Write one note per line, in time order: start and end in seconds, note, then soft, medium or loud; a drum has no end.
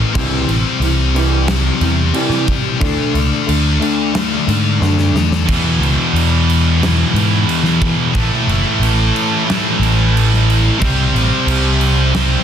0.00 0.11 A2 medium
0.00 0.12 A2 medium
0.00 0.12 E3 medium
0.00 0.13 E3 loud
0.00 0.14 A3 loud
0.13 0.45 C2 loud
0.13 2.79 C3 medium
0.13 0.46 C3 medium
0.13 0.46 E3 medium
0.13 2.80 G3 medium
0.13 0.47 G3 medium
0.13 kick loud
0.13 crash medium
0.18 2.81 C4 loud
0.47 0.62 A1 medium
0.47 0.78 C3 medium
0.47 0.79 E3 medium
0.47 crash medium
0.80 1.69 C2 loud
0.80 1.11 C3 medium
0.80 1.12 E3 medium
0.80 crash medium
1.15 1.46 C3 medium
1.15 1.46 E3 medium
1.15 1.47 G3 loud
1.15 crash medium
1.48 1.78 C3 medium
1.48 1.79 E3 medium
1.48 snare loud
1.48 crash medium
1.81 2.11 E2 medium
1.81 2.12 C3 medium
1.81 2.12 E3 medium
1.81 crash medium
2.13 2.45 C3 medium
2.13 2.46 E3 medium
2.13 2.46 G3 loud
2.13 crash medium
2.30 2.60 C3 loud
2.30 snare soft
2.47 2.78 C3 medium
2.47 kick medium
2.47 crash medium
2.80 2.96 D2 medium
2.80 3.12 D3 medium
2.80 5.46 D3 medium
2.80 3.12 A3 medium
2.80 5.47 A3 medium
2.80 3.13 D4 loud
2.80 kick loud
2.80 crash medium
2.84 5.48 D4 medium
3.13 3.29 C#2 medium
3.13 3.44 D3 medium
3.13 3.44 A3 medium
3.13 crash medium
3.47 3.78 D2 medium
3.47 3.78 D3 medium
3.47 3.78 A3 medium
3.47 crash medium
3.80 4.12 D3 medium
3.80 4.12 A3 medium
3.80 4.13 D4 medium
3.80 crash medium
4.13 4.44 D3 medium
4.13 4.44 A3 medium
4.13 snare loud
4.13 crash medium
4.47 4.78 G#2 medium
4.47 4.77 D3 medium
4.47 4.77 A3 medium
4.47 crash medium
4.80 5.11 F#2 medium
4.80 5.12 D3 medium
4.80 5.12 A3 loud
4.80 5.12 D4 loud
4.80 snare medium
4.98 snare medium
5.13 5.44 E2 medium
5.13 5.44 D3 medium
5.13 5.44 A3 medium
5.13 snare medium
5.32 snare medium
5.47 8.12 E2 medium
5.47 5.78 E2 loud
5.47 8.13 B2 medium
5.47 8.15 E3 loud
5.47 kick loud
5.47 crash medium
5.79 5.95 C#2 medium
5.83 crash medium
6.13 7.03 E2 medium
6.13 crash medium
6.50 crash medium
6.80 8.12 E2 medium
6.80 8.13 B2 medium
6.80 8.14 E3 medium
6.80 snare loud
6.80 crash medium
7.14 7.44 G#2 medium
7.14 crash medium
7.49 crash medium
7.63 7.94 E3 loud
7.63 snare soft
7.82 kick medium
7.82 crash medium
8.13 8.29 A1 loud
8.13 10.78 A2 medium
8.13 10.80 E3 medium
8.13 10.80 A3 loud
8.13 kick loud
8.13 crash medium
8.47 8.62 F#1 medium
8.47 crash medium
8.79 9.10 A1 medium
8.79 crash medium
9.16 crash medium
9.46 10.78 A2 medium
9.46 10.79 E3 medium
9.46 10.80 A3 medium
9.46 crash medium
9.50 snare loud
9.79 10.69 A1 loud
9.79 crash medium
10.17 crash medium
10.34 snare soft
10.50 crash medium
10.79 11.11 C2 loud
10.79 12.44 C3 medium
10.79 12.44 G3 loud
10.79 kick loud
10.79 crash medium
10.83 12.44 C4 loud
11.14 11.29 A1 medium
11.14 crash medium
11.47 12.36 C2 medium
11.47 crash medium
11.81 crash medium
12.12 12.44 C3 medium
12.12 12.44 G3 medium
12.12 12.44 C4 medium
12.12 snare loud
12.12 crash medium